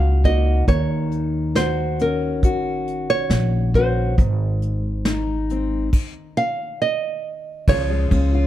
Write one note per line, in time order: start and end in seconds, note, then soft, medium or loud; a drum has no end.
0.00 0.63 C#2 medium
0.00 0.63 C#3 medium
0.00 0.63 F#3 medium
0.00 0.24 A#3 medium
0.00 0.26 D#4 soft
0.00 0.25 F#4 medium
0.00 0.25 F5 medium
0.24 0.63 A#3 soft
0.24 2.01 D#4 soft
0.24 0.64 F#4 medium
0.24 0.65 D#5 medium
0.24 kick medium
0.24 closed hi-hat soft
0.68 2.43 D#2 medium
0.68 7.67 D#3 medium
0.68 1.55 C#5 medium
0.68 kick medium
0.68 closed hi-hat medium
1.11 closed hi-hat soft
1.55 2.43 F#4 medium
1.55 2.01 C5 medium
1.55 snare medium
1.55 closed hi-hat medium
1.99 3.75 C#4 medium
1.99 3.13 A#4 medium
1.99 closed hi-hat soft
2.43 3.26 A#1 medium
2.43 3.75 F#4 medium
2.43 kick medium
2.43 closed hi-hat medium
2.87 closed hi-hat soft
3.10 3.71 C#5 medium
3.30 4.13 A#1 medium
3.30 snare medium
3.30 closed hi-hat medium
3.74 4.13 C#4 soft
3.74 4.14 F#4 medium
3.74 6.76 C5 medium
3.74 kick medium
3.74 closed hi-hat soft
4.18 5.89 G#1 medium
4.18 5.88 G#2 medium
4.18 kick medium
4.18 closed hi-hat medium
4.62 closed hi-hat soft
5.05 5.88 D#4 medium
5.05 snare medium
5.05 closed hi-hat medium
5.50 5.88 C4 medium
5.50 closed hi-hat soft
5.93 kick medium
5.93 crash medium
6.37 6.81 F5 medium
6.82 7.69 D#5 medium
7.68 8.09 C#2 loud
7.68 8.47 C#3 medium
7.68 8.47 F3 medium
7.68 7.89 G#3 medium
7.68 8.10 C#4 medium
7.68 8.33 F4 medium
7.68 8.47 C#5 loud
7.68 kick medium
7.68 crash medium
7.90 8.47 G#3 medium
8.11 8.47 C#2 medium
8.11 8.47 C#4 medium
8.11 kick medium
8.11 ride medium
8.34 8.47 F4 medium